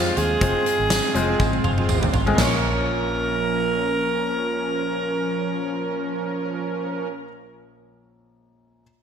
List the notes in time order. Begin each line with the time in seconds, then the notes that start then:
Already playing: F2 G#3 C4 F4 G#4 C5
0.16 D#2 F4 G#4, closed hi-hat, tambourine
0.41 F1 G#3 C4 F4 C5, kick, closed hi-hat, tambourine
0.65 C4, closed hi-hat, tambourine
0.80 G#1
0.90 G#3, snare, closed hi-hat, tambourine
1.04 C4 F4 G#4
1.14 F1 G#3 C4 F4 C5, closed hi-hat, tambourine
1.29 C4 F4 G#4
1.40 G#1 G#3, kick, high tom, tambourine
1.53 C4 F4 G#4, high tom
1.64 F1 F4, mid tom, tambourine
1.78 C4 F4 G#4, mid tom
1.88 G#1 C4, mid tom, tambourine
2.03 mid tom
2.13 G#1 F4, floor tom, tambourine
2.26 G#3 C4 F4 G#4, floor tom
2.35 A#1 F3 A#3 C#4 A#4, snare, floor tom, tambourine, crash
2.40 C#4 F4 C#5
2.44 F4